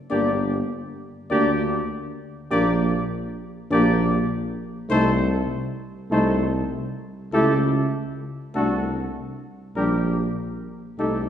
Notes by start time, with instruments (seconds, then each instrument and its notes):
0.10 tuba G1, trombone A#3, french horn D4, flugelhorn G4, trumpet D5
1.30 tuba D2, trombone A#3, french horn D4, flugelhorn G4, trumpet D5
2.50 tuba A#1, trombone A#3, french horn D4, flugelhorn G4, trumpet D5
3.71 tuba A#1, trombone A#3, french horn D4, flugelhorn G4, trumpet D5
4.89 tuba C2, trombone A3, french horn D#4, flugelhorn A4, trumpet C5
6.11 tuba C2, trombone A3, french horn D#4, flugelhorn A4, trumpet C5
7.33 tuba C#2, trombone A3, french horn E4, flugelhorn G4, trumpet A4
8.54 tuba C2, trombone A3, french horn D4, flugelhorn F#4, trumpet A4
9.75 tuba A#1, trombone G3, french horn D4, flugelhorn G4, trumpet A#4
10.98 tuba C2, trombone A3, french horn D#4, flugelhorn G4, trumpet A4